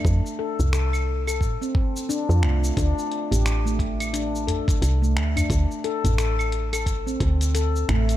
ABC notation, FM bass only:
X:1
M:4/4
L:1/16
Q:"Swing 16ths" 1/4=88
K:Dm
V:1 name="FM bass" clef=bass
F,, z2 C,,4- C,, A,, z4 F,, C,,2 | D,, z2 A,,,8 z C,,2 D,,2 | D,, z2 A,,,6- A,,, D,,4 A,,,2 |]